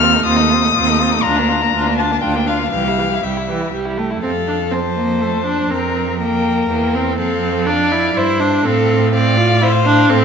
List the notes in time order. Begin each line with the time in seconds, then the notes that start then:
Already playing: D#2 F6
0.02 C4 F4
0.13 A3 D#4
0.25 D#2 C4 F4 D#6
0.37 D#4
0.41 A3
0.50 C4 F4
0.61 D#4
0.66 A3
0.74 D#2 F4
0.79 C4
0.87 A3 D#4
0.99 C4 F4
1.12 A3 D#4
1.22 D2 F4 A#5
1.27 D4
1.37 A#3 D4
1.49 D4 F4
1.62 A#3 D4
1.73 D2 D4 F4
1.86 A#3 D4
1.98 D4 F4 A5
2.11 A#3 D4
2.21 D2 D4 F4 G5
2.35 A#3 D4
2.46 D4 F4 F5
2.59 A#3
2.63 D4
2.71 C2 E3 F5
2.75 G4
2.84 G3 E4
2.97 E3 G4
3.11 G3 E4
3.23 C2 G3 G4 E5
3.37 E4
3.49 E3 G4
3.61 E4
3.72 C2 G3 G4
3.85 E4
3.98 A3 G4
4.11 E4
4.23 F2 C4 A4 F5
4.48 D4
4.71 C4 C5 A5
4.96 A#3
5.20 A3 A5
5.45 D4
5.70 F2 C4 A#4 A#5
6.20 A#3 A#4 G5
6.69 E2 A#3 G5
6.94 C4
7.18 F2 C4 A4 F5
7.66 D4 D5 F5
7.91 E4
8.15 G2 E4 C5 E5
8.40 D4
8.65 A2 C4 A4 F5
9.13 C4 D5 F5
9.37 F4
9.61 E4 C5
9.85 D4
10.09 A2 C4 A4